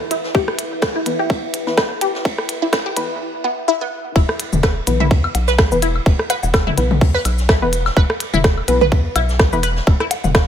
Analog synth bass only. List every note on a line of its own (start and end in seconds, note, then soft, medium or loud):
0.00 0.07 B1 medium
0.72 1.00 E1 medium
1.06 1.31 B1 medium
1.30 1.46 E1 medium
1.54 1.83 E1 medium
1.91 1.98 B1 medium
2.62 2.91 E1 medium
2.97 3.20 B1 loud
4.16 4.24 E1 loud
4.53 4.81 E1 loud
4.87 5.12 B1 loud
5.11 5.27 E2 loud
5.35 5.73 B1 loud
5.72 6.00 E1 medium
6.06 6.15 E1 loud
6.43 6.72 E1 loud
6.77 7.03 B1 loud
7.01 7.18 E2 loud
7.25 7.64 B1 loud
7.62 7.91 E1 medium
7.97 8.05 E1 loud
8.34 8.62 E1 loud
8.68 8.93 B1 medium
8.92 9.08 E2 loud
9.16 9.54 B1 loud
9.53 9.81 E1 medium
9.87 9.96 E1 loud
10.24 10.47 E1 loud